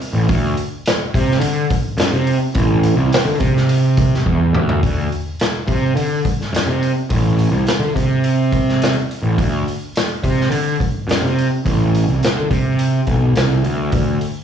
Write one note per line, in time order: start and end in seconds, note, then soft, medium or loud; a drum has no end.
0.02 open hi-hat medium
0.13 0.26 A1 medium
0.29 0.53 D2 medium
0.29 kick loud
0.29 open hi-hat medium
0.57 open hi-hat medium
0.86 snare loud
0.86 open hi-hat medium
1.14 1.38 C3 medium
1.14 kick medium
1.14 open hi-hat medium
1.31 snare soft
1.40 1.65 D3 medium
1.40 open hi-hat medium
1.70 kick loud
1.70 open hi-hat medium
1.98 2.10 F#2 loud
1.98 snare loud
1.98 open hi-hat medium
2.12 2.36 C3 medium
2.27 open hi-hat medium
2.55 2.92 A1 medium
2.55 kick loud
2.55 open hi-hat medium
2.83 open hi-hat medium
2.96 3.09 C2 loud
3.13 snare loud
3.13 open hi-hat medium
3.25 3.38 D3 medium
3.40 4.13 C3 medium
3.40 kick medium
3.40 open hi-hat medium
3.57 snare soft
3.69 open hi-hat medium
3.97 kick loud
3.97 open hi-hat medium
4.14 snare soft
4.26 4.51 E2 medium
4.26 kick medium
4.53 4.79 D2 medium
4.53 mid tom medium
4.69 floor tom medium
4.83 5.07 D2 medium
4.83 kick loud
4.83 open hi-hat medium
5.12 open hi-hat medium
5.40 snare loud
5.40 open hi-hat medium
5.67 5.92 C3 medium
5.67 kick medium
5.67 open hi-hat medium
5.96 6.20 D3 medium
5.96 open hi-hat medium
6.25 kick medium
6.25 open hi-hat medium
6.41 snare soft
6.53 6.65 F#2 medium
6.53 snare loud
6.53 open hi-hat medium
6.66 6.91 C3 medium
6.83 open hi-hat medium
7.10 7.47 A1 medium
7.10 kick loud
7.10 open hi-hat medium
7.39 open hi-hat medium
7.51 7.64 C2 medium
7.67 snare loud
7.67 open hi-hat medium
7.80 7.93 D3 medium
7.95 8.93 C3 medium
7.95 kick medium
7.95 open hi-hat medium
8.24 open hi-hat medium
8.52 kick medium
8.52 open hi-hat medium
8.69 snare soft
8.82 snare medium
8.82 open hi-hat medium
9.11 open hi-hat medium
9.23 9.35 A1 medium
9.38 9.62 D2 medium
9.38 kick loud
9.38 open hi-hat medium
9.68 open hi-hat medium
9.96 snare loud
9.96 open hi-hat medium
10.23 10.48 C3 medium
10.23 kick medium
10.23 open hi-hat medium
10.41 snare soft
10.51 10.76 D3 loud
10.51 open hi-hat medium
10.80 kick medium
10.80 open hi-hat medium
11.08 11.20 F#2 medium
11.08 snare loud
11.08 open hi-hat medium
11.22 11.47 C3 medium
11.39 open hi-hat medium
11.65 12.02 A1 medium
11.65 kick loud
11.65 open hi-hat medium
11.95 open hi-hat medium
12.08 12.20 C2 medium
12.23 snare loud
12.23 open hi-hat medium
12.36 12.49 D3 medium
12.51 13.00 C3 medium
12.51 kick medium
12.51 open hi-hat medium
12.79 open hi-hat medium
13.07 13.33 B1 medium
13.07 kick medium
13.07 open hi-hat medium
13.36 13.61 C2 medium
13.36 snare medium
13.36 open hi-hat medium
13.64 13.90 D2 medium
13.64 open hi-hat soft
13.92 14.17 D2 medium
13.92 kick loud
13.92 open hi-hat medium
14.21 open hi-hat medium